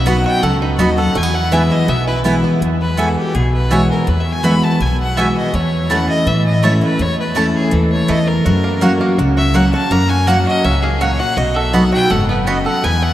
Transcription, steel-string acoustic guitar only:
0.00 0.40 B2 loud
0.06 0.41 F#3 medium
0.06 0.41 B3 medium
0.06 0.42 D#4 medium
0.06 0.42 F#4 loud
0.43 1.13 F#2 medium
0.79 0.97 F#3 medium
0.79 0.98 B3 medium
0.79 0.98 D#4 medium
0.79 0.96 F#4 medium
0.98 1.16 D#4 soft
0.98 1.15 F#4 medium
1.15 1.85 E2 medium
1.52 1.87 E3 medium
1.52 1.87 G#3 medium
1.52 1.87 B3 loud
1.52 1.88 E4 medium
1.88 2.58 B2 medium
2.24 2.59 E3 medium
2.24 2.60 G#3 medium
2.24 2.60 B3 medium
2.24 2.61 E4 loud
2.62 3.31 E2 medium
2.97 3.33 E3 medium
2.97 3.33 G#3 medium
2.97 3.33 B3 medium
2.97 3.33 F#4 loud
3.35 4.04 B2 medium
3.71 4.06 E3 medium
3.71 4.06 G#3 medium
3.71 4.07 B3 medium
3.71 4.07 F#4 loud
4.43 4.78 E3 medium
4.43 4.79 G#3 medium
4.43 4.79 B3 medium
4.43 4.80 F#4 medium
4.81 5.50 B2 medium
5.17 5.52 E3 medium
5.17 5.53 G#3 medium
5.17 5.53 B3 medium
5.17 5.53 F#4 medium
5.54 6.23 E2 medium
5.90 6.25 E3 medium
5.90 6.25 A3 medium
5.90 6.26 C#4 loud
5.90 6.26 E4 medium
6.27 6.62 E3 medium
6.63 6.81 E3 medium
6.63 6.82 A3 medium
6.63 6.82 C#4 medium
6.63 6.80 E4 medium
6.81 7.00 C#4 soft
6.81 6.99 E4 medium
6.99 7.69 E2 medium
7.35 7.70 E3 medium
7.35 7.71 A3 medium
7.35 7.71 C#4 loud
7.35 7.71 E4 medium
7.71 8.41 E3 medium
8.08 8.44 E2 medium
8.46 9.15 F#2 medium
8.81 9.16 F#3 medium
8.81 9.17 A#3 medium
8.81 9.17 C#4 medium
8.81 9.17 F#4 medium
9.19 9.88 C#3 medium
9.54 9.72 F#3 medium
9.54 9.73 A#3 medium
9.54 9.73 C#4 medium
9.54 9.72 F#4 loud
9.73 9.92 C#4 soft
9.73 9.90 F#4 medium
9.91 10.61 F#2 loud
10.27 10.63 F#3 medium
10.27 10.63 A#3 medium
10.27 10.63 C#4 loud
10.27 10.64 F#4 loud
10.64 10.99 G#2 medium
11.01 11.36 A#2 medium
11.38 12.07 B2 medium
11.73 12.08 F#3 medium
11.73 12.09 B3 medium
11.73 12.09 D#4 medium
11.73 12.10 F#4 medium
12.10 12.45 G#2 medium
12.47 12.82 F#2 medium
12.84 13.13 E2 medium

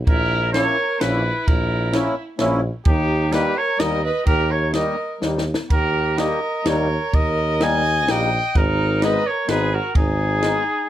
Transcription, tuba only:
0.07 0.68 A#1 medium
1.01 1.31 A#1 medium
1.48 2.07 A#1 medium
2.40 2.70 A#1 medium
2.86 3.47 D#2 loud
3.79 4.10 D#2 medium
4.27 4.89 D#2 medium
5.22 5.53 D#2 medium
5.70 6.32 D#2 medium
6.65 6.96 D#2 loud
7.14 8.09 D#2 medium
8.08 8.38 A#1 medium
8.56 9.16 G#1 loud
9.48 9.78 G#1 loud
9.95 10.57 G#1 loud

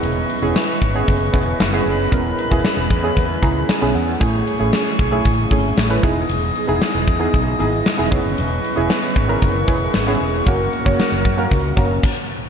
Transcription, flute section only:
0.00 3.96 B4 medium
0.00 3.90 D#5 medium
0.00 1.84 C#6 medium
1.87 3.92 B5 medium
4.20 6.01 G#4 medium
4.20 6.02 G#5 medium
4.20 6.01 C#6 medium
6.03 8.10 G#4 medium
6.03 10.43 D#5 medium
6.03 8.10 D#6 medium
8.12 10.44 B4 medium
8.12 11.99 C#6 medium
10.46 12.02 A#4 medium
10.46 12.02 F#5 medium

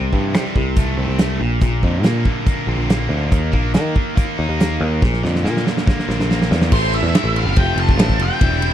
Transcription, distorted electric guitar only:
0.00 0.54 C3 medium
0.00 0.98 C4 medium
0.13 0.55 E3 medium
0.34 0.55 G3 medium
0.56 1.41 C3 medium
0.78 1.19 A3 medium
0.99 1.41 C4 medium
1.20 1.41 A3 medium
1.41 1.61 A#2 medium
1.62 2.68 A#2 medium
1.83 2.24 D3 medium
2.03 2.46 A#3 medium
2.25 3.09 D3 medium
2.46 2.89 A#3 medium
2.68 3.32 C4 medium
2.89 3.51 A#3 medium
3.10 3.30 D3 medium
3.31 3.94 D#3 medium
3.51 3.73 A#3 medium
3.74 4.14 A#3 medium
3.95 4.79 D#3 medium
4.15 4.58 A#3 medium
4.38 5.02 D#4 medium
4.59 5.02 A#3 medium
4.80 5.02 D#3 medium
5.01 6.08 A#2 medium
5.23 5.63 D3 medium
5.43 5.85 A#3 medium
5.65 6.49 D3 medium
5.86 6.29 A#3 medium
6.07 6.71 C4 medium
6.30 6.72 A#3 medium
6.50 6.71 D3 medium
6.72 7.14 A2 medium
6.72 7.13 E3 medium
6.72 6.94 A3 medium
6.72 6.93 C4 medium
6.72 6.91 E4 medium
6.92 7.14 A3 medium
6.92 7.16 C4 medium
6.92 7.16 E4 medium
7.15 7.55 E3 medium
7.15 7.37 A3 medium
7.15 7.37 C4 medium
7.15 7.34 E4 medium
7.35 7.55 A3 medium
7.35 7.57 C4 medium
7.35 7.55 E4 medium
7.56 7.97 F3 loud
7.56 7.98 A3 loud
7.56 7.99 C4 loud
7.56 7.99 F4 loud
7.98 8.39 F3 medium
7.98 8.21 A3 medium
7.98 8.21 C4 medium
7.98 8.18 F4 medium
8.20 8.40 A3 medium
8.20 8.42 C4 medium
8.20 8.39 F4 medium
8.40 8.73 E3 medium
8.40 8.62 G3 loud
8.40 8.62 C4 medium
8.40 8.59 E4 medium
8.60 8.73 G3 medium
8.60 8.73 C4 medium
8.60 8.73 E4 medium

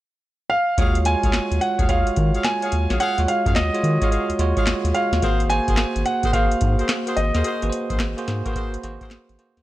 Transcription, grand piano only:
0.50 1.07 F5 loud
1.06 1.63 G#5 loud
1.61 1.87 F#5 medium
1.89 2.46 F5 medium
2.44 3.02 G#5 medium
3.00 3.29 F#5 loud
3.28 3.54 F5 medium
3.56 4.99 D#5 medium
4.94 5.52 F5 medium
5.50 6.01 G#5 loud
6.06 6.31 F#5 medium
6.33 7.19 F5 medium
7.16 9.07 D#5 medium

